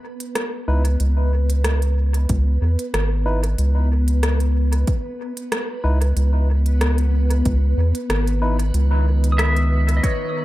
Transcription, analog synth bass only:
0.68 0.97 C#2 medium
1.00 2.26 C#2 medium
2.30 2.58 C#2 loud
2.62 2.77 E2 medium
2.94 3.56 G#1 medium
3.59 4.85 C#2 medium
5.84 6.13 C#2 medium
6.16 7.43 C#2 medium
7.46 7.74 C#2 loud
7.77 7.93 E2 medium
8.10 8.71 G#1 medium
8.74 10.01 C#2 medium

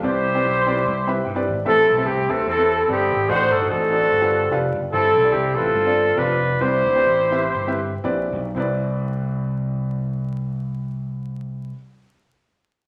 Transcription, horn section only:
0.04 1.22 E4 medium
0.04 1.22 G4 medium
0.04 1.22 C5 loud
1.67 2.44 C4 medium
1.67 2.44 E4 medium
1.67 2.05 A4 loud
2.07 2.29 G4 medium
2.31 2.48 A4 medium
2.49 2.90 C4 medium
2.49 3.26 E4 medium
2.49 2.87 A4 loud
2.91 3.28 B3 medium
2.91 3.28 C4 medium
2.91 3.31 G4 loud
3.30 4.07 D#4 medium
3.30 3.68 F#4 medium
3.30 3.52 C5 loud
3.52 3.69 A4 loud
3.70 4.70 C4 medium
3.70 4.70 F#4 medium
3.70 4.70 A4 loud
4.93 5.55 C4 medium
4.93 5.72 E4 medium
4.93 5.31 A4 loud
5.33 5.56 G4 medium
5.55 6.37 C4 medium
5.55 6.16 F4 medium
5.55 6.17 A4 loud
6.17 6.58 D4 medium
6.17 6.58 F4 medium
6.17 6.61 B4 loud
6.61 8.00 E4 medium
6.61 8.00 G4 medium
6.61 8.04 C5 loud

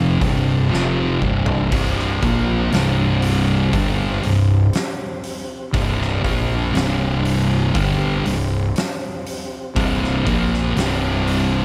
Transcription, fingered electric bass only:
0.00 0.18 F1 loud
0.21 0.68 C1 loud
0.73 1.20 F1 medium
1.22 1.69 C1 medium
1.71 2.19 C1 medium
2.23 2.70 A#1 medium
2.73 3.70 C1 loud
3.73 4.21 G1 medium
4.24 4.71 C1 medium
5.74 6.21 C1 medium
6.25 6.72 A#1 medium
6.76 7.73 C1 loud
7.75 8.23 G1 loud
8.26 8.73 C1 medium
9.76 10.24 C1 medium
10.26 10.74 A#1 medium
10.77 11.65 C1 medium

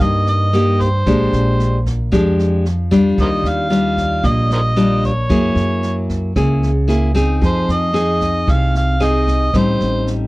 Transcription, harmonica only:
0.03 0.28 D#5 medium
0.29 0.84 D#5 medium
0.82 1.87 C5 medium
3.22 3.28 A#4 medium
3.22 3.29 C5 medium
3.22 3.50 D#5 medium
3.48 4.28 F5 medium
4.26 4.52 D#5 medium
4.53 4.60 A#4 medium
4.53 4.61 C5 medium
4.53 5.01 D#5 medium
5.06 6.06 C#5 medium
7.46 7.73 C5 medium
7.72 8.53 D#5 medium
8.51 8.76 F5 medium
8.77 9.05 F5 medium
9.04 9.59 D#5 medium
9.58 10.09 C5 medium

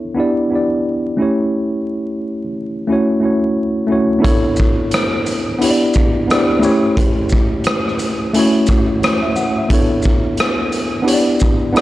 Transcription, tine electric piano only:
0.00 0.15 B3 medium
0.00 0.16 D4 medium
0.00 0.17 E4 medium
0.00 0.17 A4 medium
0.00 0.17 C#5 medium
0.15 0.46 B3 medium
0.15 0.47 D4 medium
0.15 0.48 E4 medium
0.15 0.48 G4 medium
0.20 0.49 D5 medium
0.50 1.12 B3 medium
0.50 1.13 D4 medium
0.50 1.14 E4 medium
0.50 1.14 G4 medium
0.55 1.15 D5 medium
1.17 2.43 A3 medium
1.17 2.43 C#4 medium
1.17 2.44 E4 medium
1.21 2.45 G4 medium
1.21 2.45 C#5 medium
2.87 3.19 A3 medium
2.87 3.20 C#4 medium
2.87 3.20 E4 medium
2.87 3.21 F#4 medium
2.93 3.22 C#5 medium
3.20 3.84 A3 medium
3.20 3.85 C#4 medium
3.20 3.85 E4 medium
3.20 3.86 F#4 medium
3.25 3.87 C#5 medium
3.87 4.20 A3 medium
3.87 4.21 C#4 medium
3.87 4.20 E4 medium
3.91 4.22 F#4 medium
3.91 4.23 C#5 medium
4.19 5.47 B3 medium
4.19 5.48 D4 medium
4.19 5.48 E4 medium
4.23 5.49 A4 medium
4.23 5.50 C#5 loud
5.58 6.22 B3 medium
5.58 6.23 D4 medium
5.58 6.24 E4 medium
5.62 6.24 G4 medium
5.62 5.70 C#5 medium
5.70 6.28 D5 medium
6.28 6.63 B3 medium
6.28 6.63 D4 medium
6.28 6.61 E4 medium
6.32 6.62 G4 medium
6.32 6.65 D5 loud
6.59 7.87 A3 medium
6.59 7.87 C#4 medium
6.59 7.88 E4 medium
6.63 7.89 G4 medium
6.63 7.89 C#5 loud
8.34 8.96 A3 loud
8.34 8.97 C#4 medium
8.34 8.98 E4 medium
8.38 8.98 F#4 medium
8.38 8.99 C#5 loud
9.03 9.22 C#5 medium
9.22 9.35 E5 medium
9.36 9.55 F#5 medium
9.58 9.90 E5 medium
9.69 10.95 B3 medium
9.69 10.95 D4 medium
9.69 10.96 E4 medium
9.69 10.97 A4 medium
9.74 10.97 C#5 medium
11.02 11.67 B3 loud
11.02 11.68 D4 medium
11.02 11.68 E4 medium
11.06 11.69 G4 medium
11.06 11.15 C#5 medium
11.14 11.73 D5 medium
11.72 11.81 B3 medium
11.72 11.81 D4 medium
11.72 11.81 E4 medium
11.72 11.81 G4 medium
11.78 11.81 D5 medium

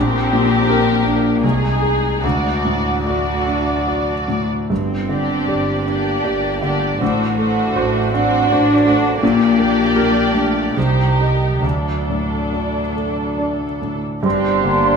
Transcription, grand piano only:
0.00 1.39 A#1 medium
0.33 0.91 A#2 soft
0.69 1.02 G4 soft
0.69 1.02 A#4 soft
1.06 1.44 D4 soft
1.44 2.21 C2 soft
1.82 2.19 G#4 soft
2.24 4.66 D2 soft
2.65 3.31 A2 soft
3.06 3.43 F#4 soft
3.06 3.43 D5 soft
3.47 4.12 D4 soft
3.87 4.25 F#4 soft
3.87 4.25 D5 soft
4.28 4.70 A2 soft
4.70 6.97 G2 soft
5.09 5.71 D3 soft
5.48 5.83 G4 soft
5.48 5.83 D5 soft
5.87 6.48 D4 soft
6.25 6.59 G4 soft
6.25 6.59 D5 soft
6.62 7.00 D3 soft
7.01 9.18 A2 medium
7.38 7.99 A3 soft
7.76 8.10 F#4 soft
7.76 8.10 C5 soft
8.14 8.72 D4 soft
8.51 8.83 F#4 soft
8.51 8.84 C5 soft
8.86 9.22 A3 soft
9.23 10.73 A#2 medium
9.59 10.19 A#3 soft
9.96 10.31 G4 soft
9.96 10.31 A#4 soft
10.35 10.76 D4 soft
10.77 11.61 C2 soft
11.21 11.60 G4 soft
11.21 11.60 D#5 soft
11.62 14.20 D2 soft
12.09 12.79 A2 soft
12.53 12.92 D4 soft
12.53 12.93 D5 soft
12.96 13.65 A3 soft
13.38 13.78 D4 soft
13.38 13.78 D5 soft
13.82 14.24 A2 soft
14.23 14.97 G2 medium
14.63 14.97 D3 soft

